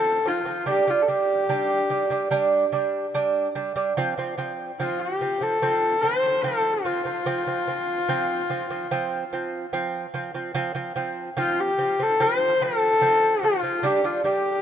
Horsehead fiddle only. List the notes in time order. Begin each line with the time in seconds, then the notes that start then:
Already playing: A4
0.27 F4
0.70 G4
0.90 F4
1.02 A4
1.08 G4
4.80 F4
5.00 G4
5.43 A4
6.01 C5
6.42 A4
6.84 F4
11.39 F4
11.60 G4
12.03 A4
12.22 C5
12.62 A4
13.44 F4
13.86 G4
14.05 F4
14.24 G4